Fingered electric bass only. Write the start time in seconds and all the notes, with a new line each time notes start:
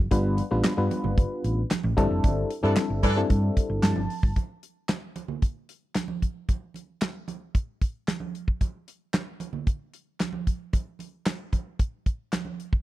0.11 G1
0.51 A1
0.78 G2
1.04 G1
1.44 A1
1.84 A1
1.98 G1
2.11 F1
2.24 G1
2.64 G2
2.90 G1
3.03 G2
3.30 G2
3.70 G1
3.83 G2
3.96 G1
4.23 G1